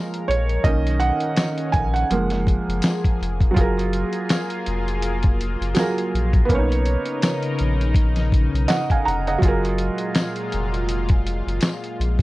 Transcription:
Already playing: F3 G#3 A#3 F4 A#4 C#5 D#5 F5
0.14 closed hi-hat
0.28 A#1 C#5, closed hi-hat
0.49 closed hi-hat
0.64 B1 D#3 A#3 C#4 D#5, kick, closed hi-hat
0.87 closed hi-hat
1.00 F#5, closed hi-hat
1.20 closed hi-hat
1.36 snare, closed hi-hat, tambourine
1.58 closed hi-hat
1.72 A#1 G#5, kick, closed hi-hat
1.94 F#5, closed hi-hat
2.10 F#1 F3 G#3 A#3 G#4, closed hi-hat
2.30 snare, closed hi-hat
2.47 kick, closed hi-hat
2.68 F#1, closed hi-hat
2.82 snare, closed hi-hat, tambourine
3.04 kick, closed hi-hat
3.21 F1, closed hi-hat
3.41 kick, closed hi-hat
3.51 F#3 F4
3.56 F#1 A#3 F4 G#4, kick, closed hi-hat
3.61 A#4
3.79 closed hi-hat
3.93 closed hi-hat
4.13 closed hi-hat
4.29 snare, closed hi-hat, tambourine
4.50 closed hi-hat
4.66 F1, closed hi-hat
4.88 closed hi-hat
5.02 closed hi-hat
5.23 kick, closed hi-hat
5.41 closed hi-hat
5.61 F#1, closed hi-hat
5.74 F#3 F4 G#4, snare, closed hi-hat, tambourine
5.80 A#4
5.98 closed hi-hat
6.14 A#1, closed hi-hat
6.33 kick, closed hi-hat
6.45 A#3 B3
6.49 B1 C#3 C#4 D#4 A#4, kick, closed hi-hat
6.55 D#4 C#5
6.72 closed hi-hat
6.86 closed hi-hat
7.05 closed hi-hat
7.22 snare, closed hi-hat, tambourine
7.43 closed hi-hat
7.59 A#1, closed hi-hat
7.81 closed hi-hat
7.94 kick, closed hi-hat
8.16 snare, closed hi-hat
8.32 kick, closed hi-hat
8.54 B1, closed hi-hat
8.68 D#5 F#5, snare, closed hi-hat, tambourine
8.90 F5 G#5, kick, closed hi-hat
9.05 F1 F#5 A#5, closed hi-hat
9.27 D#5 F#5, closed hi-hat
9.38 A#2 F#3 G#3 F4, kick
9.42 F#1 F4 G#4, closed hi-hat
9.48 A#4
9.65 closed hi-hat
9.78 closed hi-hat
9.98 closed hi-hat
10.15 snare, closed hi-hat, tambourine
10.36 closed hi-hat
10.52 F1, closed hi-hat
10.74 closed hi-hat
10.89 closed hi-hat
11.09 kick, closed hi-hat
11.27 closed hi-hat
11.47 F#1, closed hi-hat
11.61 snare, closed hi-hat, tambourine
11.84 closed hi-hat
12.00 A#1, closed hi-hat
12.19 kick

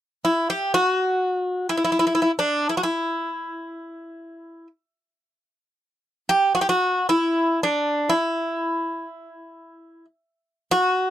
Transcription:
0.25 E4
0.50 G4
0.74 F#4
1.69 E4
1.77 E4
1.84 E4
1.92 E4
1.99 E4
2.07 E4
2.15 E4
2.22 E4
2.39 D4
2.69 E4
2.77 F#4
2.83 E4
6.29 G4
6.55 F#4
6.61 G4
6.69 F#4
7.09 E4
7.63 D4
8.09 E4
10.71 F#4

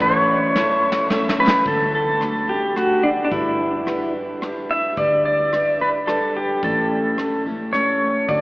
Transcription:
0.00 A1 A2 E3 A3 C#4 E4 A4 C#5, kick, closed hi-hat
0.55 A3 C#4 E4 A4 C#5, snare
0.92 snare
1.09 A3 C#4 E4 A4 C#5 E5, snare
1.29 snare
1.38 A3 C#4 E4 A4 B4 G5
1.47 snare
1.66 D2 D3 A3 D4 F#4 A4, kick, closed hi-hat
1.95 A4
2.21 A3 D4 F#4 A4, cross-stick, closed hi-hat
2.48 D4 F#4 G4 A4
2.75 A3 D4 F#4 A4, cross-stick, closed hi-hat
3.02 D4 F#4 A4
3.25 D4
3.30 G1 G3 D4 E4 G4 B4, kick, closed hi-hat
3.85 G3 D4 G4 B4, cross-stick, closed hi-hat
4.41 G3 D4 G4 B4, cross-stick, closed hi-hat
4.69 D4 G4 B4 E5
4.97 D2 G3 D4 G4 B4 D5, kick, closed hi-hat
5.25 D5
5.52 G3 D4 G4 B4, cross-stick, closed hi-hat
5.80 D4 G4 B4
6.07 G3 D4 G4 A4 B4, cross-stick, closed hi-hat
6.37 G4
6.63 A1 A2 E3 A3 C#4 E4 A4, kick, closed hi-hat
7.18 A3 C#4 E4 A4, cross-stick, closed hi-hat
7.46 A3 C#4 E4 A4
7.73 A3 C#4 E4 A4 C#5, cross-stick, closed hi-hat
8.28 D2 D3 A3 D4 F#4 A4 D5, kick, closed hi-hat

